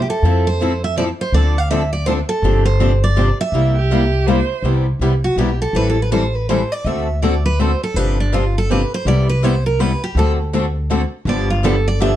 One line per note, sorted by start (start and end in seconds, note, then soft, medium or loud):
0.02 0.09 G4 medium
0.10 0.47 A4 medium
0.22 1.11 F2 medium
0.22 0.45 F3 medium
0.22 0.45 C4 medium
0.22 0.45 E4 medium
0.22 0.45 A4 medium
0.47 0.84 C5 medium
0.62 0.72 F3 medium
0.62 0.72 C4 medium
0.62 0.72 E4 medium
0.62 0.72 A4 loud
0.84 0.97 E5 medium
0.98 1.08 F3 medium
0.98 1.08 C4 medium
0.98 1.09 E4 medium
0.98 1.09 A4 loud
0.98 1.04 D5 medium
1.21 1.33 C5 medium
1.32 2.21 D2 medium
1.32 1.55 D3 medium
1.32 1.55 F3 medium
1.32 1.55 C4 medium
1.32 1.55 D4 medium
1.32 1.55 A4 medium
1.32 1.58 D5 medium
1.58 1.70 F5 medium
1.71 1.81 D3 medium
1.71 1.82 F3 loud
1.71 1.82 C4 medium
1.71 1.82 D4 medium
1.71 1.82 A4 loud
1.71 1.91 E5 medium
1.93 2.06 D5 medium
2.06 2.18 D3 medium
2.06 2.18 F3 medium
2.06 2.18 C4 medium
2.06 2.18 D4 medium
2.06 2.18 A4 medium
2.06 2.12 C5 medium
2.29 2.65 A4 medium
2.42 3.31 G1 medium
2.42 2.65 C3 medium
2.42 2.65 F3 medium
2.42 2.65 C4 medium
2.42 2.65 D4 medium
2.42 2.65 G4 medium
2.65 3.04 C5 medium
2.80 2.91 C3 medium
2.80 2.91 F3 medium
2.80 2.91 C4 loud
2.80 2.92 D4 medium
2.80 2.92 G4 medium
3.04 3.37 D5 medium
3.16 3.27 C3 medium
3.16 3.28 F3 medium
3.16 3.28 C4 medium
3.16 3.28 D4 medium
3.16 3.28 G4 medium
3.41 4.24 E5 medium
3.52 4.41 C2 loud
3.52 3.75 C3 medium
3.52 3.75 G3 medium
3.52 3.75 A#3 medium
3.52 3.75 E4 medium
3.52 3.75 G4 medium
3.76 4.28 G4 medium
3.91 4.02 C3 medium
3.91 4.02 G3 medium
3.91 4.02 A#3 medium
3.91 4.02 E4 medium
3.91 4.02 G4 medium
4.26 4.38 C3 medium
4.26 4.38 G3 medium
4.26 4.38 A#3 medium
4.26 4.39 E4 medium
4.26 4.39 G4 medium
4.26 4.63 C5 loud
4.63 4.92 C2 medium
4.63 4.85 C3 medium
4.63 4.85 G3 medium
4.63 4.85 B3 medium
4.63 4.85 E4 medium
4.63 4.85 G4 medium
4.99 5.31 C2 medium
4.99 5.12 C3 medium
4.99 5.12 G3 medium
4.99 5.12 B3 medium
4.99 5.12 E4 medium
4.99 5.12 G4 medium
5.24 5.37 F#4 medium
5.36 5.68 B1 medium
5.36 5.49 C3 medium
5.36 5.49 G3 medium
5.36 5.49 B3 medium
5.36 5.49 E4 medium
5.36 5.49 G4 medium
5.36 5.60 G4 medium
5.62 5.75 A4 medium
5.73 6.62 A1 medium
5.73 5.95 E3 medium
5.73 5.96 G3 medium
5.73 5.96 C4 medium
5.73 5.96 E4 medium
5.73 5.96 A4 medium
5.73 5.87 B4 medium
5.90 6.00 A4 medium
6.02 6.12 B4 medium
6.12 6.23 E3 medium
6.12 6.22 G3 medium
6.12 6.23 C4 medium
6.12 6.23 E4 medium
6.12 6.23 A4 medium
6.12 6.36 C5 medium
6.36 6.49 B4 medium
6.49 6.60 E3 medium
6.49 6.60 G3 medium
6.49 6.60 C4 medium
6.49 6.60 E4 medium
6.49 6.60 A4 medium
6.49 6.72 C5 medium
6.72 6.87 D5 medium
6.85 7.73 D2 medium
6.85 7.06 D3 medium
6.85 7.06 A3 medium
6.85 7.07 C4 medium
6.85 7.07 F#4 medium
6.85 7.07 A4 medium
6.85 7.22 E5 medium
7.22 7.33 D3 medium
7.22 7.33 A3 medium
7.22 7.34 C4 medium
7.22 7.34 F#4 medium
7.22 7.34 A4 loud
7.22 7.44 D5 medium
7.46 7.60 B4 medium
7.60 7.70 D3 medium
7.60 7.70 A3 medium
7.60 7.70 C4 medium
7.60 7.71 F#4 medium
7.60 7.71 A4 loud
7.60 7.81 C5 medium
7.83 7.96 A4 medium
7.94 8.83 G1 medium
7.94 8.17 C3 medium
7.94 8.17 F3 medium
7.94 8.17 C4 medium
7.94 8.17 D4 medium
7.94 8.17 G4 medium
7.94 8.18 B4 medium
8.20 8.33 D4 medium
8.32 8.43 C3 medium
8.32 8.43 F3 medium
8.32 8.44 C4 medium
8.32 8.44 D4 medium
8.32 8.55 F4 medium
8.32 8.44 G4 medium
8.58 8.70 A4 medium
8.70 8.81 C3 medium
8.70 8.81 F3 medium
8.70 8.81 C4 medium
8.70 8.81 D4 medium
8.70 8.81 G4 medium
8.70 8.92 B4 medium
8.94 9.07 C5 medium
9.05 9.94 C2 medium
9.05 9.27 C3 medium
9.05 9.27 G3 medium
9.05 9.27 B3 medium
9.05 9.27 E4 medium
9.05 9.27 G4 medium
9.05 9.29 D5 medium
9.29 9.44 B4 medium
9.42 9.54 C3 medium
9.42 9.54 G3 medium
9.42 9.54 B3 medium
9.42 9.54 E4 medium
9.42 9.54 G4 medium
9.42 9.65 C5 medium
9.66 9.80 A#4 medium
9.79 9.90 C3 medium
9.79 9.91 G3 medium
9.79 9.91 B3 medium
9.79 9.91 E4 medium
9.79 9.91 G4 medium
9.79 10.02 B4 medium
10.04 10.16 G4 medium
10.15 11.04 D2 loud
10.15 10.37 D3 medium
10.15 10.38 A3 medium
10.15 10.38 C4 medium
10.15 10.38 F#4 medium
10.15 10.38 A4 medium
10.15 10.32 A4 medium
10.53 10.64 D3 medium
10.53 10.64 A3 medium
10.53 10.65 C4 loud
10.53 10.65 F#4 medium
10.53 10.65 A4 loud
10.90 11.01 D3 medium
10.90 11.01 A3 medium
10.90 11.01 C4 medium
10.90 11.01 F#4 medium
10.90 11.01 A4 medium
11.25 12.14 G1 loud
11.25 11.47 D3 medium
11.25 11.48 F3 medium
11.25 11.48 B3 medium
11.25 11.48 D4 medium
11.25 11.48 G4 medium
11.25 11.50 D5 medium
11.50 11.63 F4 medium
11.63 11.74 D3 medium
11.63 11.74 F3 medium
11.63 11.75 B3 loud
11.63 11.75 D4 loud
11.63 11.75 G4 loud
11.63 11.86 A4 medium
11.88 12.00 D5 medium
12.00 12.11 D3 medium
12.00 12.11 F3 medium
12.00 12.12 B3 medium
12.00 12.12 D4 medium
12.00 12.12 G4 medium
12.00 12.16 E5 medium